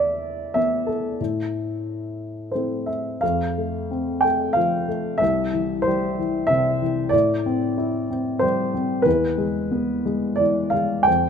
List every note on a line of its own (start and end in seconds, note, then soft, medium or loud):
0.00 1.16 E2 soft
0.00 0.57 D5 medium
0.00 0.54 E5 medium
0.54 1.18 E3 soft
0.54 1.18 B3 soft
0.54 1.18 E4 soft
0.54 0.88 E5 medium
0.87 2.50 A4 medium
1.21 3.19 A2 soft
2.52 3.21 A3 soft
2.52 3.21 C4 soft
2.52 2.88 C5 soft
2.56 3.22 E4 soft
2.86 3.23 E5 soft
3.21 5.18 F2 medium
3.21 4.26 F5 medium
3.58 4.23 A3 soft
3.91 5.18 C4 soft
4.21 4.87 A3 soft
4.21 4.56 G5 medium
4.53 5.19 F3 soft
4.53 5.22 F5 medium
4.88 5.20 A3 soft
5.18 7.09 C2 medium
5.18 5.86 E5 medium
5.53 6.17 E3 soft
5.82 6.50 C5 medium
5.87 7.10 G3 medium
6.19 6.80 E3 soft
6.47 7.11 C3 medium
6.47 7.14 E5 medium
6.82 7.12 E3 soft
7.09 9.02 A2 medium
7.09 8.44 D5 medium
7.46 8.09 C4 soft
7.78 9.02 E4 medium
8.10 8.73 C4 soft
8.39 9.04 G3 soft
8.39 9.06 C5 medium
8.74 9.05 C4 soft
9.02 11.03 E2 medium
9.02 10.41 B4 medium
9.38 10.04 G#3 soft
9.71 11.03 B3 soft
10.05 10.72 G#3 soft
10.36 10.73 D5 medium
10.40 11.05 E3 soft
10.70 11.06 G#3 soft
10.70 11.06 F5 medium
11.03 11.29 G5 medium
11.07 11.29 F2 medium